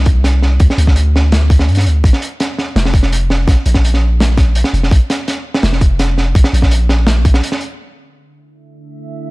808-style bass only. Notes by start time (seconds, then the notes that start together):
Already playing: C2
0.60 D2
0.78 D2
1.68 G2
1.86 D2
2.04 A#1
2.76 F1
3.48 A#1
3.66 A#1
4.74 F1
4.91 A#1
5.63 F1
6.35 A#1
6.53 A#1
7.25 A#1